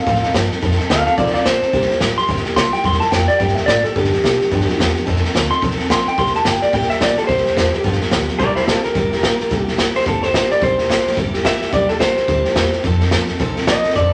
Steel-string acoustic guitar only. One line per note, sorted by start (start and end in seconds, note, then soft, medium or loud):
0.07 0.23 F3 loud
0.07 0.23 C4 medium
0.07 0.23 D#4 medium
0.07 0.21 A4 loud
0.23 0.34 C4 medium
0.23 0.35 D#4 medium
0.23 0.34 A4 medium
0.34 0.50 F3 medium
0.34 0.51 C4 medium
0.34 0.51 D#4 medium
0.34 0.49 A4 medium
0.50 0.61 C4 soft
0.50 0.62 D#4 medium
0.50 0.62 A4 medium
0.61 0.78 F3 loud
0.61 0.78 C4 medium
0.61 0.77 D#4 loud
0.61 0.76 A4 loud
0.77 0.90 C4 soft
0.77 0.90 D#4 medium
0.77 0.89 A4 medium
0.89 1.06 F3 medium
0.89 1.05 D#4 medium
0.89 1.04 A4 medium
1.05 1.17 C4 soft
1.05 1.17 D#4 soft
1.05 1.17 A4 medium
1.17 1.34 F3 medium
1.17 1.34 C4 medium
1.17 1.34 D#4 medium
1.17 1.32 A4 loud
1.34 1.44 C4 medium
1.34 1.45 D#4 medium
1.34 1.45 A4 medium
1.45 1.61 F3 medium
1.45 1.62 C4 medium
1.45 1.61 D#4 medium
1.45 1.60 A4 medium
1.61 1.73 C4 medium
1.61 1.73 D#4 soft
1.61 1.73 A4 medium
1.72 1.89 C3 medium
1.72 1.89 G3 medium
1.72 1.90 A#3 medium
1.72 1.89 E4 medium
1.72 1.88 G4 medium
1.89 2.01 A#3 soft
1.89 2.01 E4 medium
1.89 2.01 G4 medium
2.01 2.17 G3 medium
2.01 2.18 A#3 medium
2.01 2.17 E4 medium
2.01 2.15 G4 medium
2.17 2.27 A#3 soft
2.17 2.28 E4 medium
2.17 2.28 G4 medium
2.28 2.45 C3 medium
2.28 2.45 G3 medium
2.28 2.45 A#3 medium
2.28 2.45 E4 loud
2.28 2.43 G4 loud
2.44 2.56 A#3 medium
2.44 2.56 E4 medium
2.44 2.56 G4 medium
2.56 2.73 G3 medium
2.56 2.73 A#3 medium
2.56 2.73 E4 medium
2.73 2.83 A#3 soft
2.73 2.84 E4 soft
2.73 2.84 G4 medium
2.84 3.00 C3 medium
2.84 3.01 G3 medium
2.84 3.01 A#3 medium
2.84 3.01 E4 medium
2.84 2.99 G4 medium
3.00 3.12 A#3 soft
3.00 3.13 E4 medium
3.00 3.12 G4 soft
3.12 3.28 G3 medium
3.12 3.29 A#3 medium
3.12 3.29 E4 medium
3.12 3.27 G4 medium
3.29 3.39 A#3 soft
3.29 3.40 E4 medium
3.29 3.40 G4 medium
3.40 3.56 C3 medium
3.40 3.56 G3 medium
3.40 3.57 A#3 medium
3.40 3.56 E4 medium
3.40 3.55 G4 medium
3.56 3.67 A#3 soft
3.56 3.67 E4 soft
3.56 3.68 G4 medium
3.67 3.84 G3 medium
3.83 3.96 A#3 soft
3.83 3.96 E4 soft
3.83 3.95 G4 medium
3.95 4.12 G2 medium
3.95 4.12 D3 medium
3.95 4.12 F3 medium
3.95 4.12 B3 medium
3.95 4.11 D4 medium
3.95 4.10 G4 medium
4.11 4.21 F3 soft
4.11 4.23 B3 soft
4.11 4.23 D4 medium
4.11 4.23 G4 medium
4.22 4.39 F3 medium
4.22 4.40 B3 medium
4.22 4.39 D4 medium
4.22 4.38 G4 medium
4.40 4.50 F3 medium
4.40 4.51 B3 medium
4.40 4.51 D4 medium
4.40 4.51 G4 medium
4.51 4.67 G2 loud
4.51 4.68 D3 loud
4.51 4.68 F3 medium
4.51 4.68 B3 loud
4.51 4.67 D4 loud
4.51 4.66 G4 loud
4.67 4.77 F3 soft
4.67 4.78 B3 medium
4.67 4.79 D4 medium
4.67 4.79 G4 medium
4.78 4.95 F3 medium
4.78 4.96 B3 medium
4.78 4.94 D4 medium
4.78 4.93 G4 medium
4.95 5.05 F3 medium
4.95 5.06 B3 medium
4.95 5.07 D4 medium
4.95 5.06 G4 medium
5.06 5.23 F3 medium
5.06 5.23 C4 medium
5.06 5.23 D#4 loud
5.06 5.22 A4 loud
5.23 5.33 C4 soft
5.23 5.35 D#4 medium
5.23 5.35 A4 medium
5.34 5.50 F3 medium
5.34 5.51 C4 medium
5.34 5.49 D#4 medium
5.34 5.48 A4 medium
5.49 5.60 C4 soft
5.49 5.62 D#4 soft
5.49 5.62 A4 medium
5.61 5.78 F3 medium
5.61 5.78 C4 medium
5.61 5.78 D#4 medium
5.61 5.76 A4 medium
5.77 5.88 C4 medium
5.77 5.89 D#4 medium
5.77 5.90 A4 medium
5.88 6.05 F3 medium
5.88 6.06 C4 medium
5.88 6.06 D#4 medium
5.88 6.05 A4 medium
6.06 6.18 C4 medium
6.06 6.18 D#4 medium
6.06 6.18 A4 medium
6.18 6.34 C3 medium
6.18 6.34 G3 medium
6.18 6.34 A#3 medium
6.18 6.34 E4 medium
6.18 6.33 G4 medium
6.34 6.45 A#3 soft
6.34 6.46 E4 medium
6.34 6.45 G4 medium
6.45 6.62 G3 medium
6.45 6.62 A#3 medium
6.45 6.61 E4 medium
6.45 6.60 G4 medium
6.61 6.72 A#3 soft
6.61 6.73 E4 medium
6.61 6.73 G4 medium
6.73 6.89 C3 medium
6.73 6.89 G3 medium
6.73 6.90 A#3 medium
6.73 6.88 E4 medium
6.73 6.87 G4 medium
6.88 7.00 A#3 soft
6.88 7.01 E4 soft
6.88 7.00 G4 medium
7.00 7.17 G3 medium
7.00 7.17 A#3 medium
7.00 7.17 E4 medium
7.00 7.15 G4 medium
7.17 7.28 A#3 soft
7.17 7.28 E4 medium
7.17 7.28 G4 medium
7.28 7.44 C3 medium
7.28 7.45 G3 medium
7.28 7.45 A#3 medium
7.28 7.45 E4 medium
7.28 7.43 G4 medium
7.44 7.56 A#3 soft
7.44 7.56 E4 soft
7.44 7.56 G4 medium
7.56 7.72 G3 medium
7.56 7.73 A#3 medium
7.56 7.72 E4 medium
7.56 7.71 G4 medium
7.72 7.84 A#3 medium
7.72 7.84 E4 medium
7.72 7.83 G4 medium
7.83 8.00 G2 medium
7.83 8.00 D3 loud
7.83 8.00 F3 medium
7.83 8.00 B3 medium
7.83 8.00 F4 loud
7.83 7.99 G4 loud
8.00 8.10 F3 medium
8.00 8.11 B3 medium
8.00 8.11 F4 medium
8.00 8.12 G4 medium
8.11 8.28 F3 medium
8.11 8.28 B3 medium
8.11 8.27 F4 medium
8.11 8.27 G4 medium
8.28 8.40 F3 soft
8.28 8.40 B3 medium
8.28 8.40 F4 medium
8.28 8.39 G4 medium
8.40 8.56 C3 medium
8.40 8.56 G3 medium
8.40 8.56 A#3 medium
8.40 8.56 E4 medium
8.40 8.54 G4 loud
8.55 8.67 A#3 soft
8.55 8.68 E4 medium
8.55 8.67 G4 soft
8.67 8.83 G3 medium
8.67 8.84 A#3 medium
8.67 8.83 E4 medium
8.67 8.81 G4 medium
8.82 8.94 A#3 soft
8.82 8.95 E4 medium
8.82 8.95 G4 medium
8.95 9.11 C3 medium
8.95 9.11 G3 medium
8.95 9.12 A#3 medium
8.95 9.11 E4 medium
8.95 9.09 G4 loud
9.11 9.22 A#3 soft
9.11 9.23 E4 soft
9.11 9.23 G4 medium
9.22 9.39 G3 medium
9.22 9.39 A#3 medium
9.22 9.39 E4 medium
9.22 9.38 G4 medium
9.39 9.49 A#3 soft
9.39 9.50 E4 medium
9.39 9.50 G4 medium
9.49 9.66 C3 medium
9.49 9.67 G3 medium
9.49 9.67 A#3 medium
9.49 9.67 E4 loud
9.49 9.65 G4 loud
9.66 9.78 A#3 soft
9.66 9.79 E4 medium
9.66 9.78 G4 medium
9.78 9.95 G3 medium
9.78 9.95 A#3 medium
9.78 9.95 E4 medium
9.78 9.94 G4 medium
9.95 10.05 A#3 soft
9.95 10.05 E4 medium
9.95 10.06 G4 medium
10.06 10.22 C3 medium
10.06 10.23 G3 medium
10.06 10.22 A#3 medium
10.06 10.22 E4 medium
10.06 10.20 G4 medium
10.21 10.33 A#3 soft
10.21 10.33 E4 medium
10.21 10.33 G4 medium
10.32 10.49 G3 medium
10.32 10.50 A#3 medium
10.32 10.49 E4 medium
10.32 10.47 G4 medium
10.49 10.60 A#3 soft
10.49 10.61 E4 medium
10.49 10.61 G4 medium
10.60 10.77 C3 medium
10.60 10.78 G3 medium
10.60 10.78 A#3 medium
10.60 10.77 E4 loud
10.60 10.76 G4 medium
10.77 10.89 A#3 soft
10.77 10.90 E4 soft
10.77 10.89 G4 medium
10.88 11.05 G3 medium
10.88 11.06 A#3 medium
10.88 11.05 E4 medium
10.88 11.04 G4 medium
11.05 11.17 A#3 medium
11.05 11.18 E4 medium
11.05 11.17 G4 medium
11.18 11.34 C3 loud
11.18 11.34 G3 medium
11.18 11.34 A#3 loud
11.18 11.34 E4 loud
11.18 11.32 G4 loud
11.34 11.45 A#3 medium
11.34 11.46 E4 medium
11.34 11.45 G4 medium
11.46 11.62 G3 medium
11.46 11.62 A#3 medium
11.62 11.73 A#3 soft
11.62 11.74 E4 soft
11.62 11.73 G4 medium
11.74 11.90 C3 medium
11.74 11.90 G3 medium
11.74 11.90 A#3 medium
11.74 11.89 E4 medium
11.74 11.88 G4 medium
11.89 11.99 A#3 soft
11.89 12.01 E4 soft
11.89 12.01 G4 soft
12.00 12.17 G3 medium
12.00 12.17 A#3 medium
12.00 12.17 E4 medium
12.00 12.15 G4 medium
12.17 12.28 A#3 soft
12.17 12.29 E4 medium
12.17 12.29 G4 medium
12.28 12.45 C3 medium
12.28 12.45 G3 medium
12.28 12.45 A#3 medium
12.28 12.45 E4 loud
12.28 12.43 G4 medium
12.44 12.56 A#3 medium
12.44 12.57 E4 medium
12.44 12.56 G4 medium
12.56 12.72 G3 medium
12.56 12.73 A#3 medium
12.56 12.73 E4 medium
12.56 12.71 G4 medium
12.72 12.84 A#3 medium
12.72 12.85 E4 medium
12.72 12.84 G4 medium
12.84 13.01 F3 loud
12.84 13.01 C4 medium
12.84 13.00 D#4 loud
12.84 12.98 A4 loud
12.99 13.12 C4 soft
12.99 13.12 D#4 medium
12.99 13.12 A4 medium
13.12 13.28 F3 medium
13.12 13.29 C4 medium
13.12 13.28 D#4 medium
13.12 13.26 A4 medium
13.27 13.38 C4 soft
13.27 13.39 D#4 medium
13.27 13.40 A4 medium
13.39 13.56 F3 medium
13.39 13.56 C4 medium
13.39 13.56 D#4 loud
13.39 13.54 A4 loud
13.55 13.68 C4 soft
13.55 13.68 D#4 medium
13.55 13.67 A4 medium
13.68 13.84 F3 medium
13.68 13.85 C4 medium
13.68 13.84 D#4 medium
13.68 13.83 A4 medium
13.84 13.96 C4 soft
13.84 13.96 D#4 medium
13.84 13.96 A4 medium
13.96 14.12 F3 medium
13.96 14.13 C4 medium
13.96 14.13 D#4 medium
13.96 14.11 A4 medium